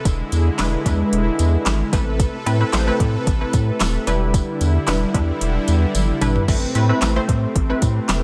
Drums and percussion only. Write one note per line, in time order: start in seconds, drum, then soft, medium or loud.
0.05 kick loud
0.05 closed hi-hat loud
0.05 tambourine medium
0.32 closed hi-hat medium
0.32 tambourine soft
0.59 snare loud
0.59 clap loud
0.59 closed hi-hat loud
0.59 tambourine medium
0.86 kick loud
0.86 closed hi-hat medium
0.86 tambourine soft
1.13 closed hi-hat medium
1.39 closed hi-hat medium
1.39 tambourine soft
1.66 snare medium
1.66 clap loud
1.66 closed hi-hat medium
1.66 tambourine medium
1.93 kick loud
1.93 closed hi-hat medium
1.93 tambourine medium
2.20 kick loud
2.20 closed hi-hat loud
2.20 tambourine medium
2.46 closed hi-hat medium
2.46 tambourine soft
2.73 snare loud
2.73 clap loud
2.73 closed hi-hat loud
2.73 tambourine medium
3.00 kick loud
3.00 closed hi-hat medium
3.27 kick loud
3.27 closed hi-hat loud
3.27 tambourine soft
3.53 kick medium
3.53 closed hi-hat medium
3.53 tambourine medium
3.80 snare loud
3.80 clap loud
3.80 closed hi-hat medium
3.80 tambourine medium
4.07 closed hi-hat medium
4.07 tambourine medium
4.34 kick loud
4.34 closed hi-hat loud
4.34 tambourine medium
4.61 closed hi-hat medium
4.61 tambourine soft
4.88 snare medium
4.88 clap loud
4.88 closed hi-hat loud
4.88 tambourine medium
5.14 kick loud
5.14 closed hi-hat medium
5.41 closed hi-hat loud
5.41 tambourine soft
5.68 closed hi-hat medium
5.68 tambourine soft
5.95 closed hi-hat medium
5.95 high tom medium
5.95 tambourine medium
6.09 mid tom medium
6.21 closed hi-hat medium
6.21 mid tom loud
6.21 tambourine medium
6.36 floor tom loud
6.48 kick loud
6.48 crash medium
6.48 tambourine medium
6.75 closed hi-hat medium
6.75 tambourine soft
7.02 snare loud
7.02 clap loud
7.02 closed hi-hat loud
7.02 tambourine medium
7.29 kick loud
7.29 closed hi-hat medium
7.56 kick loud
7.56 closed hi-hat loud
7.82 kick medium
7.82 closed hi-hat medium
7.82 tambourine medium
8.09 snare loud
8.09 clap loud
8.09 closed hi-hat medium
8.09 tambourine medium